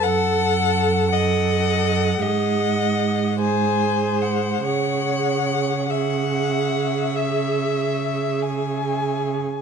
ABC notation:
X:1
M:12/8
L:1/16
Q:3/8=48
K:C#m
V:1 name="Violin"
f6 d6 f6 g4 f2 | f6 e16 z2 |]
V:2 name="Violin"
A6 f6 d6 ^B6 | c6 f6 e6 g6 |]
V:3 name="Viola"
A6 A6 G6 G6 | G6 G16- G z |]
V:4 name="Cello" clef=bass
F,,12 G,,12 | C,16- C,6- C, z |]